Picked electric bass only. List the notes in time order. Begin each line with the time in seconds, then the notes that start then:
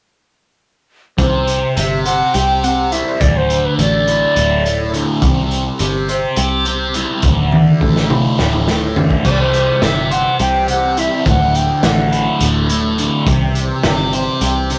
1.18 C2
1.77 G1
2.35 C2
3.21 D1
3.79 A1
4.37 D1
5.23 C2
5.80 G1
6.37 C2
7.23 D1
7.81 A1
8.40 D1
9.25 C2
9.82 G1
10.40 C2
11.26 D1
11.83 A1
12.41 D1
13.27 C2
13.84 G1
14.41 C2